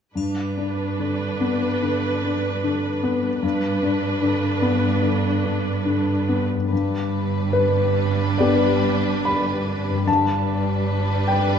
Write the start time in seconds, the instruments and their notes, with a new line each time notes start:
0.15 grand piano G2, cello section G2, viola section D4 B4, triangle
0.57 grand piano D4
0.99 grand piano D3
1.40 grand piano B3
1.82 grand piano D3
2.23 grand piano D4
2.64 grand piano D3
3.03 grand piano B3
3.43 grand piano G2, cello section G2, viola section D4 B4
3.83 grand piano D4
4.22 grand piano D3
4.62 grand piano B3
5.02 grand piano D3
5.44 grand piano D4
5.85 grand piano D3
6.29 grand piano B3
6.54 harp G2
6.59 harp G3
6.63 harp D4
6.67 viola section G3 D4, harp B4
6.72 double bass section G1, cello section G2, grand piano G2, violin section B4
7.53 grand piano B4
8.38 grand piano B3 D4 G4 D5
9.25 grand piano B5
9.90 harp G2
9.94 harp G3
9.98 harp D4
10.03 harp B4
10.07 double bass section G1, grand piano G2 A5, cello section G2, viola section G3 D4, violin section B4
11.28 grand piano G5